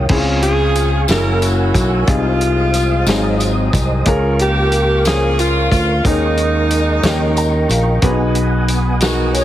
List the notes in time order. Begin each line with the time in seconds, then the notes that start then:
Already playing: D#3 C#4 D#4 F4 G4 A#4
0.09 C#2 C#3 C4 C#4 E4 G#4 F5 G#5 C#6, kick, crash
0.16 F4
0.42 C4 F4 G#4, closed hi-hat
0.75 closed hi-hat, tambourine
1.07 F#1 G#3 C#4 E4 F#4 G#4 A#4 F#5 E6, snare, closed hi-hat, tambourine
1.14 A#3
1.42 F#4, closed hi-hat, tambourine
1.74 B1 F#4, kick, closed hi-hat, tambourine
2.07 C2 C3 G#3 C4 D#4 F4 G#4 C5 F5 D#6, kick, closed hi-hat
2.41 closed hi-hat
2.74 closed hi-hat, tambourine
3.06 G#1 G#2 F#3 C4 D#4 G#4 C5 D#5 D#6, snare, closed hi-hat, tambourine
3.40 closed hi-hat, tambourine
3.73 C2, kick, closed hi-hat, tambourine
4.05 C#2 C#3 C#4 F4 G#4 A#4 F5 C#6, kick, closed hi-hat
4.39 A#3 G4, closed hi-hat
4.72 closed hi-hat, tambourine
5.05 C#4 F4 G#4 C5, snare, closed hi-hat, tambourine
5.14 C#5
5.39 F4, closed hi-hat, tambourine
5.71 D2 F4, kick, closed hi-hat, tambourine
6.04 D#2 D#3 G#3 A#3 C#4 D#4 G#4 A#4 D#5, kick, closed hi-hat
6.37 closed hi-hat
6.70 closed hi-hat, tambourine
7.03 D#2 D#3 C#4 D#4 G4 A#4 G5, snare, closed hi-hat, tambourine
7.37 A#5, closed hi-hat, tambourine
7.69 A#1 F5, closed hi-hat, tambourine
8.02 B1 B2 B3 C#4 F#4 G#4 B4 F#5 G#5 D#6, kick, closed hi-hat
8.09 D#4
8.35 closed hi-hat
8.68 closed hi-hat, tambourine
9.00 D#4 F#4 G#4 A#4, snare, closed hi-hat, tambourine
9.34 F#4 G#4 C#5, closed hi-hat, tambourine